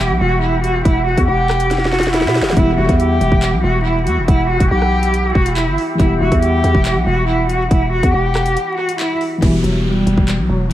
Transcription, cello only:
0.00 0.17 G4 loud
0.21 0.40 F#4 medium
0.42 0.61 E4 medium
0.64 0.83 F#4 medium
0.85 1.04 E4 medium
1.07 1.26 F#4 medium
1.28 1.89 G4 medium
1.92 2.11 F#4 medium
2.14 2.33 E4 loud
2.57 2.76 E4 loud
2.78 2.97 F#4 medium
2.99 3.60 G4 medium
3.64 3.83 F#4 medium
3.85 4.04 E4 medium
4.07 4.26 F#4 medium
4.28 4.47 E4 loud
4.50 4.69 F#4 medium
4.71 5.31 G4 medium
5.35 5.54 F#4 loud
5.57 5.76 E4 medium
6.00 6.19 E4 medium
6.21 6.40 F#4 medium
6.42 7.03 G4 loud
7.07 7.26 F#4 medium
7.28 7.47 E4 medium
7.50 7.69 F#4 medium
7.71 7.90 E4 medium
7.92 8.11 F#4 medium
8.14 8.74 G4 medium
8.78 8.97 F#4 medium
9.00 9.19 E4 medium
9.42 9.61 E3 loud
9.64 9.83 F#3 medium
9.85 10.46 G3 medium
10.50 10.69 F#3 medium

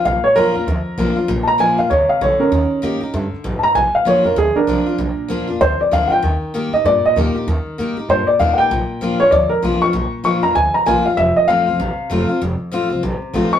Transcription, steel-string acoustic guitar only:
0.05 0.65 A#2 medium
0.36 0.54 F3 medium
0.36 0.54 A#3 medium
0.36 0.55 D4 loud
0.36 0.54 F4 loud
0.55 0.68 D4 medium
0.55 0.67 F4 medium
0.68 1.27 F2 medium
0.98 1.16 F3 medium
0.98 1.16 A#3 medium
0.98 1.16 D4 medium
0.98 1.15 F4 loud
1.16 1.29 D4 soft
1.16 1.28 F4 medium
1.28 1.88 A#2 loud
1.58 1.77 F3 medium
1.58 1.77 A#3 loud
1.58 1.78 D4 medium
1.58 1.77 F4 medium
1.78 1.91 D4 soft
1.78 1.90 F4 medium
1.91 2.20 C3 medium
2.21 2.51 D3 medium
2.52 2.81 D#3 medium
2.82 3.00 D#3 medium
2.82 3.01 A#3 loud
2.82 3.01 D#4 loud
2.82 2.99 G4 loud
3.01 3.14 D#4 medium
3.01 3.13 G4 medium
3.14 3.43 D3 medium
3.44 3.74 G#2 medium
3.75 4.35 A#2 medium
4.05 4.24 F3 medium
4.05 4.24 A#3 medium
4.05 4.25 D4 loud
4.05 4.23 F4 medium
4.24 4.37 D4 medium
4.24 4.36 F4 medium
4.36 4.96 F2 medium
4.67 4.86 F3 medium
4.67 4.86 A#3 medium
4.67 4.87 D4 medium
4.67 4.85 F4 loud
4.86 4.99 D4 soft
4.86 4.98 F4 medium
4.98 5.58 A#2 medium
5.28 5.47 F3 medium
5.28 5.48 A#3 medium
5.28 5.48 D4 loud
5.28 5.46 F4 loud
5.47 5.61 D4 medium
5.47 5.60 F4 medium
5.61 6.20 F2 medium
5.91 6.10 F3 medium
5.91 6.10 A#3 medium
5.91 6.10 D4 loud
5.91 6.09 F4 loud
6.10 6.23 D4 soft
6.10 6.22 F4 medium
6.22 6.53 D#3 medium
6.54 6.72 D#3 medium
6.54 6.72 A#3 medium
6.54 6.73 D#4 medium
6.54 6.72 G4 medium
6.73 6.86 D#4 medium
6.73 6.84 G4 medium
6.86 7.45 A#2 medium
7.16 7.34 D#3 medium
7.16 7.35 A#3 medium
7.16 7.35 D#4 medium
7.16 7.34 G4 loud
7.35 7.48 D#4 soft
7.35 7.47 G4 medium
7.48 7.77 D#3 medium
7.78 7.96 D#3 medium
7.78 7.96 A#3 medium
7.78 7.97 D#4 medium
7.78 7.96 G4 medium
7.97 8.09 D#4 medium
7.97 8.08 G4 medium
8.10 8.68 A#2 medium
8.39 8.57 D#3 medium
8.39 8.58 A#3 medium
8.39 8.58 D#4 loud
8.39 8.57 G4 loud
8.58 8.71 D#4 medium
8.58 8.70 G4 medium
8.71 9.30 A#2 medium
9.01 9.19 F3 medium
9.01 9.20 A#3 medium
9.01 9.20 D4 loud
9.01 9.18 F4 loud
9.20 9.33 D4 medium
9.20 9.31 F4 medium
9.32 9.92 F2 medium
9.62 9.81 F3 medium
9.62 9.81 A#3 medium
9.62 9.82 D4 loud
9.62 9.80 F4 loud
9.81 9.94 D4 medium
9.81 9.93 F4 medium
9.93 10.53 A#2 medium
10.24 10.42 F3 medium
10.24 10.43 A#3 medium
10.24 10.43 D4 medium
10.24 10.41 F4 loud
10.42 10.56 D4 soft
10.42 10.55 F4 medium
10.55 11.15 F2 medium
10.86 11.04 F3 medium
10.86 11.05 A#3 loud
10.86 11.05 D4 loud
10.86 11.04 F4 loud
11.05 11.18 D4 medium
11.05 11.17 F4 medium
11.17 11.77 F2 medium
11.48 11.66 F3 medium
11.48 11.67 A3 medium
11.48 11.67 C4 medium
11.48 11.66 F4 loud
11.67 11.80 C4 medium
11.67 11.79 F4 medium
11.80 12.39 C3 medium
12.10 12.28 F3 medium
12.10 12.29 A3 loud
12.10 12.29 C4 loud
12.10 12.28 F4 loud
12.29 12.42 C4 soft
12.29 12.41 F4 medium
12.42 13.01 F2 medium
12.72 12.90 F3 medium
12.72 12.90 A3 loud
12.72 12.91 C4 loud
12.72 12.89 F4 loud
12.90 13.03 C4 soft
12.90 13.02 F4 medium
13.03 13.59 C3 medium
13.33 13.52 F3 loud
13.33 13.52 A3 medium
13.33 13.53 C4 loud
13.33 13.51 F4 loud
13.52 13.59 C4 soft
13.52 13.59 F4 medium

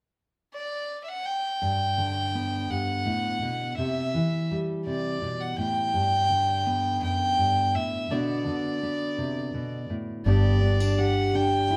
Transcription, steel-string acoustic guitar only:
1.62 2.69 G2 soft
1.98 3.78 D3 soft
2.35 3.74 B3 soft
2.70 3.06 G2 soft
3.06 3.42 A2 soft
3.42 3.78 B2 soft
3.78 4.14 C3 soft
4.14 5.90 E3 soft
4.51 6.66 G3 soft
4.86 5.21 C3 soft
5.22 5.58 B2 soft
5.58 5.94 A2 soft
5.94 7.01 G2 medium
6.30 8.09 D3 soft
6.66 8.11 B3 soft
7.02 7.38 F#2 soft
7.38 7.74 G2 soft
7.74 8.10 A2 soft
8.10 8.46 B2 medium
8.10 8.45 D3 soft
8.10 8.82 B3 soft
8.10 10.23 D4 soft
8.10 10.23 F#4 soft
8.47 11.33 D3 soft
8.83 10.22 B3 soft
9.18 9.54 C3 soft
9.54 9.89 B2 soft
9.90 10.26 A2 soft
10.26 11.77 G2 medium
10.26 10.61 B3 soft
10.26 10.62 D4 soft
10.26 10.98 G4 medium
10.62 10.80 B3 soft
10.80 11.34 D4 soft
10.99 11.70 G4 soft
11.34 11.77 D3 soft
11.34 11.77 D4 soft
11.70 11.77 E4 medium

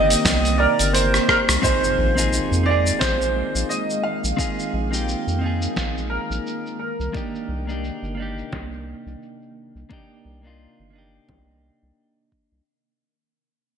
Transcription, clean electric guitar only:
0.00 1.57 A#3 medium
0.00 1.59 C4 medium
0.00 1.60 D#4 medium
0.00 1.61 G4 medium
1.62 2.12 C4 medium
1.62 2.12 D#4 medium
1.62 2.13 F4 medium
1.62 2.14 G#4 medium
2.16 2.62 C4 medium
2.16 2.63 D#4 medium
2.16 2.64 F4 medium
2.16 2.64 G#4 medium
2.63 4.34 C4 medium
2.63 4.35 D#4 medium
2.68 4.36 F4 medium
2.68 4.37 G#4 medium
4.37 4.87 C4 medium
4.37 4.88 D#4 medium
4.37 4.88 F4 medium
4.37 4.89 G#4 loud
4.91 5.38 C4 medium
4.91 5.38 D#4 medium
4.91 5.39 F4 medium
4.91 5.39 G4 medium
5.39 6.77 C4 medium
5.39 6.78 D#4 medium
5.44 6.79 F4 medium
5.44 6.80 G#4 medium
7.13 7.63 A#3 medium
7.13 7.64 D4 medium
7.13 7.65 D#4 medium
7.13 7.65 G4 medium
7.67 8.14 A#3 medium
7.67 8.15 D4 medium
7.67 8.15 D#4 medium
7.71 8.16 G4 medium
8.15 9.85 A#3 medium
8.15 9.87 D4 medium
8.20 9.88 D#4 medium
8.20 9.89 G4 medium
9.89 10.39 A#3 medium
9.89 10.40 D4 medium
9.89 10.41 D#4 medium
9.89 10.41 G4 medium
10.43 10.89 A#3 medium
10.43 10.90 D4 medium
10.43 10.91 D#4 medium
10.43 10.92 F4 medium
10.91 12.61 A#3 medium
10.91 12.62 D4 medium
10.96 12.64 D#4 medium
10.96 12.65 G4 medium

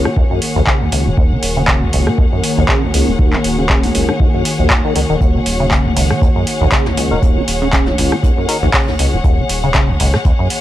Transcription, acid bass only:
0.05 0.09 D#3 loud
0.17 0.24 D#2 medium
0.31 0.40 F#2 medium
0.56 0.62 D#2 loud
0.67 0.83 C#3 medium
0.81 0.90 C#2 medium
0.92 1.08 C#2 medium
1.06 1.10 D#3 loud
1.18 1.33 D#2 medium
1.31 1.38 D#3 medium
1.57 1.63 C#3 medium
1.68 1.83 C#3 medium
1.82 1.91 C#2 medium
1.93 2.09 C#2 medium
2.07 2.11 D#3 loud
2.18 2.26 D#2 medium
2.32 2.42 F#2 medium
2.58 2.64 D#2 loud
2.69 2.84 C#3 medium
2.83 2.92 C#2 medium
2.94 3.09 C#2 medium
3.08 3.12 D#3 loud
3.19 3.35 D#2 medium
3.33 3.39 D#3 medium
3.58 3.65 C#3 medium
3.70 3.85 C#3 medium
3.84 3.93 C#2 medium
3.95 4.10 C#2 medium
4.09 4.12 D#3 loud
4.20 4.28 D#2 medium
4.34 4.43 F#2 medium
4.59 4.72 D#2 medium
4.71 4.82 D#1 medium
4.84 4.94 D#3 medium
4.96 5.00 D#3 medium
5.10 5.16 D#3 medium
5.21 5.36 D#2 medium
5.35 5.41 D#3 medium
5.60 5.66 C#3 medium
5.71 5.87 C#3 medium
5.85 5.95 C#2 medium
5.97 6.12 C#2 medium
6.10 6.14 D#3 loud
6.22 6.29 D#2 medium
6.36 6.45 F#2 medium
6.61 6.67 D#2 loud
6.72 6.88 C#3 medium
6.86 6.95 C#2 medium
6.97 7.13 C#2 medium
7.11 7.15 D#3 loud
7.22 7.38 D#2 medium
7.36 7.43 D#3 medium
7.62 7.68 C#3 medium
7.73 7.88 C#3 medium
7.87 7.96 C#2 medium
7.98 8.13 C#2 medium
8.12 8.16 D#3 loud
8.23 8.31 D#2 medium
8.37 8.47 F#2 medium
8.63 8.69 D#2 loud
8.74 8.89 C#3 medium
8.88 8.97 C#2 medium
8.99 9.14 C#2 medium
9.13 9.17 D#3 loud
9.24 9.40 D#2 medium
9.38 9.44 D#3 medium
9.63 9.70 C#3 medium
9.75 9.90 C#3 medium
9.89 9.98 C#2 medium
10.00 10.15 C#2 medium
10.14 10.17 D#3 loud
10.25 10.33 D#2 medium
10.39 10.48 F#2 medium

